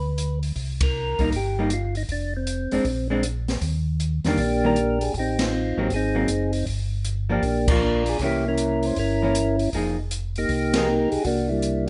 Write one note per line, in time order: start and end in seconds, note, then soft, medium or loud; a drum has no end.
0.00 0.52 D2 medium
0.00 0.39 B4 medium
0.18 closed hi-hat medium
0.43 open hi-hat soft
0.55 1.15 C2 medium
0.55 kick soft
0.55 open hi-hat soft
0.81 1.30 A#4 loud
0.81 kick medium
0.81 ride medium
1.19 1.31 A#1 medium
1.19 1.31 G3 medium
1.19 1.32 A#3 medium
1.19 1.32 D#4 medium
1.19 kick soft
1.19 open hi-hat soft
1.32 2.05 G1 medium
1.32 kick soft
1.32 open hi-hat soft
1.36 1.70 G4 medium
1.59 1.70 G3 medium
1.59 1.70 A#3 medium
1.59 1.71 D#4 medium
1.70 1.95 F4 medium
1.70 closed hi-hat medium
1.95 2.03 D#4 medium
1.95 open hi-hat soft
2.08 2.68 F1 medium
2.08 2.34 D4 medium
2.08 kick soft
2.08 open hi-hat soft
2.37 3.08 C4 medium
2.47 closed hi-hat soft
2.71 2.79 F1 soft
2.71 2.84 G#3 medium
2.71 2.84 C4 medium
2.71 2.85 D4 medium
2.71 open hi-hat soft
2.85 3.58 A#1 medium
2.85 kick soft
2.85 open hi-hat soft
3.10 3.22 G#3 medium
3.10 3.23 C4 medium
3.10 3.23 D4 medium
3.23 closed hi-hat medium
3.48 snare medium
3.48 open hi-hat soft
3.61 4.20 D#2 medium
3.61 kick soft
3.61 open hi-hat soft
4.00 closed hi-hat soft
4.24 4.37 E2 medium
4.24 4.37 D#3 medium
4.24 4.37 G3 medium
4.24 4.38 A#3 medium
4.24 4.99 A#3 medium
4.24 4.38 D4 medium
4.24 4.65 D4 medium
4.24 4.66 G4 medium
4.24 snare soft
4.24 open hi-hat soft
4.38 5.10 A#1 medium
4.38 kick soft
4.38 open hi-hat soft
4.64 4.75 D#3 medium
4.64 4.76 G3 medium
4.64 4.76 A#3 medium
4.64 4.76 D4 medium
4.64 5.13 D4 medium
4.64 5.13 G4 medium
4.64 5.04 A#4 loud
4.76 closed hi-hat medium
5.01 5.15 G#4 medium
5.01 open hi-hat soft
5.14 5.73 A1 medium
5.14 5.42 G4 medium
5.14 kick soft
5.14 open hi-hat soft
5.19 5.41 C4 medium
5.19 5.89 D#4 medium
5.39 5.89 C4 medium
5.39 5.79 F4 medium
5.39 snare medium
5.39 ride medium
5.77 5.89 A1 medium
5.77 5.90 F#3 medium
5.77 5.90 A#3 medium
5.77 5.90 C4 medium
5.77 5.92 G4 medium
5.90 6.26 G#1 medium
5.90 kick soft
5.90 open hi-hat soft
5.94 6.66 C4 medium
5.94 6.66 D#4 medium
5.94 6.51 G#4 medium
6.15 6.27 F#3 medium
6.15 6.28 A#3 medium
6.15 6.28 C4 medium
6.28 6.64 F#1 medium
6.28 closed hi-hat medium
6.53 open hi-hat soft
6.66 7.39 G1 medium
6.66 kick soft
6.66 open hi-hat soft
7.05 closed hi-hat medium
7.29 7.42 F3 medium
7.29 7.42 A#3 medium
7.29 8.04 A#3 medium
7.29 7.42 D4 medium
7.29 7.70 D4 medium
7.29 7.67 G4 medium
7.43 8.16 A#1 medium
7.43 kick soft
7.43 open hi-hat soft
7.68 7.80 F3 medium
7.68 7.81 A#3 medium
7.68 7.81 D4 medium
7.68 8.18 D4 medium
7.68 8.18 F4 medium
7.68 kick medium
7.68 crash medium
7.72 8.09 A#4 medium
8.06 8.22 G#4 medium
8.06 open hi-hat soft
8.19 8.92 C2 medium
8.19 8.43 E3 medium
8.19 8.43 A#3 medium
8.19 8.43 C#4 medium
8.19 kick soft
8.19 open hi-hat soft
8.24 8.94 A#3 medium
8.24 8.47 E4 medium
8.24 8.45 G4 medium
8.48 8.98 C#4 medium
8.48 8.98 E4 medium
8.48 8.86 A#4 medium
8.58 closed hi-hat medium
8.83 8.98 C5 medium
8.83 open hi-hat soft
8.96 9.69 G1 medium
8.96 9.70 C#4 medium
8.96 9.70 E4 medium
8.96 9.56 A#4 medium
8.96 kick soft
8.96 open hi-hat soft
9.22 9.34 E3 medium
9.22 9.34 A#3 medium
9.22 9.34 C#4 medium
9.35 closed hi-hat medium
9.59 open hi-hat soft
9.73 10.45 F1 medium
9.73 9.96 F3 medium
9.73 9.96 A#3 soft
9.73 9.96 D#4 medium
9.73 9.96 G#4 medium
9.73 kick soft
9.73 open hi-hat soft
10.11 closed hi-hat medium
10.36 11.09 A#3 medium
10.36 10.75 D#4 medium
10.36 10.75 G4 medium
10.36 open hi-hat soft
10.49 11.08 C2 medium
10.49 kick soft
10.49 open hi-hat soft
10.74 10.86 F3 medium
10.74 10.86 A#3 medium
10.74 10.86 D#4 medium
10.74 11.23 D#4 medium
10.74 11.23 G4 medium
10.74 10.87 G#4 medium
10.74 11.10 A#4 loud
10.74 snare medium
10.74 ride medium
11.12 11.18 C2 soft
11.12 11.25 G#4 medium
11.12 open hi-hat soft
11.24 11.89 C2 medium
11.24 11.51 A#3 medium
11.24 11.89 D4 medium
11.24 11.48 F#4 loud
11.24 kick soft
11.24 open hi-hat soft
11.49 11.89 G3 medium
11.49 11.89 A#3 medium
11.49 11.85 E4 medium
11.62 closed hi-hat soft